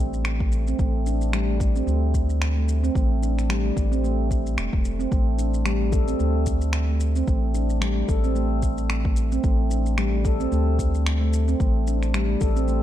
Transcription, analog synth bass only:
0.00 0.74 A1 medium
0.79 1.82 A1 medium
1.87 2.90 D2 medium
2.95 3.71 A1 loud
3.77 4.57 A1 medium
4.58 4.69 E1 medium
4.73 5.06 E1 medium
5.12 6.14 A1 medium
6.20 7.22 D2 medium
7.27 8.03 A1 medium
8.09 9.38 A1 medium
9.44 10.47 A1 loud
10.52 11.55 D2 loud
11.60 12.36 A1 medium
12.41 12.83 A1 medium

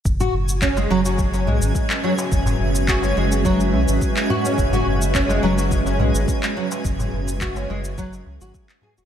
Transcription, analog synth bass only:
0.05 0.30 F#1 medium
0.33 0.87 F#1 medium
0.90 1.48 F#1 medium
1.47 1.59 B1 medium
1.62 1.73 G#1 medium
2.32 2.56 F#1 medium
2.60 3.13 F#1 medium
3.17 3.75 F#1 medium
3.73 3.86 B1 medium
3.88 4.00 G#1 medium
4.58 4.83 F#1 medium
4.86 5.40 F#1 medium
5.43 6.01 F#1 medium
6.00 6.12 B1 medium
6.15 6.26 G#1 medium
6.85 7.09 F#1 loud
7.13 7.66 F#1 medium
7.70 8.23 F#1 medium
8.26 8.39 C#2 medium
8.41 8.52 G#1 loud
8.98 9.05 E1 loud

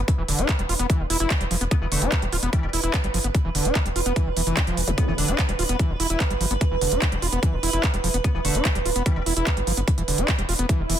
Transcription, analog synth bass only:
0.18 0.24 E1 medium
0.28 0.34 E1 loud
0.39 0.44 E1 medium
0.59 0.65 E1 medium
0.69 0.75 E1 loud
0.79 0.85 E1 medium
1.00 1.06 E1 medium
1.10 1.16 E1 loud
1.20 1.26 F1 medium
1.41 1.46 E1 medium
1.51 1.57 E1 loud
1.61 1.67 E1 medium
1.81 1.87 E1 medium
1.92 1.97 E1 loud
2.02 2.08 E1 medium
2.22 2.28 E1 medium
2.33 2.38 D1 loud
2.43 2.48 E1 medium
2.63 2.69 E1 medium
2.73 2.79 E1 loud
2.84 2.89 E1 medium
3.04 3.10 G1 medium
3.14 3.20 G1 loud
3.24 3.30 G1 medium
3.45 3.51 E1 medium
3.55 3.61 E1 loud
3.65 3.71 E1 medium
3.86 3.91 E1 medium
3.96 4.02 E1 loud
4.06 4.12 E1 medium
4.26 4.32 E1 medium
4.37 4.42 E1 loud
4.47 4.53 F1 medium
4.67 4.73 E1 medium
4.77 4.83 E1 loud
4.88 4.93 E1 medium
5.08 5.14 E1 medium
5.18 5.24 E1 loud
5.28 5.34 E1 medium
5.49 5.55 E1 medium
5.59 5.65 D1 loud
5.69 5.75 E1 medium
5.90 5.95 E1 medium
6.00 6.06 E1 loud
6.10 6.16 E1 medium
6.30 6.36 G1 medium
6.41 6.46 G1 loud
6.51 6.57 G1 medium
6.71 6.77 E1 medium
6.81 6.87 E1 loud
6.92 6.97 E1 medium
7.12 7.18 E1 medium
7.22 7.28 E1 loud
7.32 7.38 E1 medium
7.53 7.59 E1 medium
7.63 7.69 E1 loud
7.73 7.79 F1 medium
7.94 8.00 E1 medium
8.04 8.10 E1 loud
8.14 8.20 E1 medium
8.35 8.40 E1 medium
8.45 8.50 E1 loud
8.55 8.61 E1 medium
8.75 8.81 E1 medium
8.86 8.91 D1 loud
8.96 9.02 E1 medium
9.16 9.22 E1 medium
9.26 9.32 E1 loud
9.37 9.42 E1 medium
9.57 9.63 G1 medium
9.67 9.73 G1 loud
9.77 9.83 G1 medium
9.98 10.04 E1 medium
10.08 10.14 E1 loud
10.18 10.24 E1 medium
10.39 10.44 E1 medium
10.49 10.55 E1 loud
10.59 10.65 E1 medium
10.79 10.85 E1 medium
10.90 10.95 E1 loud

